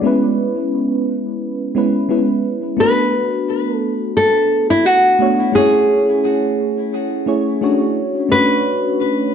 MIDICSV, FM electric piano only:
0, 0, Header, 1, 2, 480
1, 0, Start_track
1, 0, Tempo, 689655
1, 24, Time_signature, 4, 2, 24, 8
1, 6505, End_track
2, 0, Start_track
2, 0, Title_t, "FM electric piano"
2, 0, Program_c, 0, 5
2, 0, Control_c, 0, 64, 127
2, 11, Note_on_c, 0, 56, 75
2, 19, Note_on_c, 0, 59, 72
2, 27, Note_on_c, 0, 61, 70
2, 34, Control_c, 0, 64, 0
2, 36, Note_on_c, 0, 64, 69
2, 46, Note_on_c, 0, 71, 88
2, 136, Control_c, 0, 64, 127
2, 1191, Note_off_c, 0, 56, 0
2, 1195, Note_off_c, 0, 59, 0
2, 1199, Note_off_c, 0, 61, 0
2, 1204, Note_off_c, 0, 64, 0
2, 1209, Note_off_c, 0, 71, 0
2, 1216, Note_on_c, 0, 56, 67
2, 1223, Note_on_c, 0, 59, 62
2, 1226, Note_on_c, 0, 61, 61
2, 1229, Note_on_c, 0, 64, 57
2, 1237, Note_on_c, 0, 71, 75
2, 1434, Note_off_c, 0, 56, 0
2, 1437, Note_off_c, 0, 59, 0
2, 1439, Note_off_c, 0, 61, 0
2, 1441, Note_off_c, 0, 64, 0
2, 1444, Note_off_c, 0, 71, 0
2, 1452, Note_on_c, 0, 56, 61
2, 1456, Note_on_c, 0, 59, 59
2, 1461, Note_on_c, 0, 61, 57
2, 1465, Note_on_c, 0, 64, 61
2, 1471, Note_on_c, 0, 71, 70
2, 1912, Note_off_c, 0, 56, 0
2, 1914, Note_off_c, 0, 59, 0
2, 1916, Note_off_c, 0, 61, 0
2, 1918, Note_off_c, 0, 64, 0
2, 1921, Note_off_c, 0, 71, 0
2, 1926, Note_on_c, 0, 57, 72
2, 1935, Note_on_c, 0, 59, 65
2, 1941, Note_on_c, 0, 62, 60
2, 1953, Control_c, 0, 64, 0
2, 1953, Note_on_c, 0, 66, 60
2, 1963, Note_on_c, 0, 71, 77
2, 2068, Control_c, 0, 64, 127
2, 3589, Note_off_c, 0, 57, 0
2, 3593, Note_off_c, 0, 59, 0
2, 3596, Note_off_c, 0, 62, 0
2, 3602, Note_off_c, 0, 66, 0
2, 3607, Note_off_c, 0, 71, 0
2, 3612, Note_on_c, 0, 57, 68
2, 3618, Note_on_c, 0, 59, 63
2, 3623, Note_on_c, 0, 62, 60
2, 3627, Note_on_c, 0, 66, 64
2, 3633, Note_on_c, 0, 73, 77
2, 3832, Note_off_c, 0, 57, 0
2, 3835, Note_off_c, 0, 59, 0
2, 3837, Note_off_c, 0, 62, 0
2, 3839, Note_off_c, 0, 66, 0
2, 3842, Note_off_c, 0, 73, 0
2, 3843, Note_on_c, 0, 57, 75
2, 3851, Note_on_c, 0, 61, 70
2, 3860, Note_on_c, 0, 64, 71
2, 3870, Note_on_c, 0, 68, 71
2, 3872, Control_c, 0, 64, 0
2, 3878, Note_on_c, 0, 73, 84
2, 4009, Control_c, 0, 64, 127
2, 5027, Note_off_c, 0, 57, 0
2, 5031, Note_off_c, 0, 61, 0
2, 5036, Note_off_c, 0, 64, 0
2, 5041, Note_off_c, 0, 68, 0
2, 5045, Note_off_c, 0, 73, 0
2, 5054, Note_on_c, 0, 57, 67
2, 5059, Note_on_c, 0, 61, 64
2, 5062, Note_on_c, 0, 64, 62
2, 5068, Note_on_c, 0, 68, 65
2, 5070, Note_on_c, 0, 73, 75
2, 5273, Note_off_c, 0, 57, 0
2, 5275, Note_off_c, 0, 61, 0
2, 5277, Note_off_c, 0, 64, 0
2, 5280, Note_off_c, 0, 68, 0
2, 5281, Note_off_c, 0, 73, 0
2, 5298, Note_on_c, 0, 57, 67
2, 5302, Note_on_c, 0, 61, 61
2, 5307, Note_on_c, 0, 62, 60
2, 5311, Note_on_c, 0, 66, 61
2, 5316, Note_on_c, 0, 73, 74
2, 5553, Control_c, 0, 64, 0
2, 5690, Control_c, 0, 64, 127
2, 5755, Note_off_c, 0, 57, 0
2, 5757, Note_off_c, 0, 61, 0
2, 5759, Note_off_c, 0, 62, 0
2, 5761, Note_off_c, 0, 66, 0
2, 5764, Note_off_c, 0, 73, 0
2, 5769, Note_on_c, 0, 57, 69
2, 5777, Note_on_c, 0, 61, 66
2, 5786, Note_on_c, 0, 62, 62
2, 5795, Note_on_c, 0, 66, 65
2, 5804, Note_on_c, 0, 73, 77
2, 6505, Note_off_c, 0, 57, 0
2, 6505, Note_off_c, 0, 61, 0
2, 6505, Note_off_c, 0, 62, 0
2, 6505, Note_off_c, 0, 66, 0
2, 6505, Note_off_c, 0, 73, 0
2, 6505, End_track
0, 0, End_of_file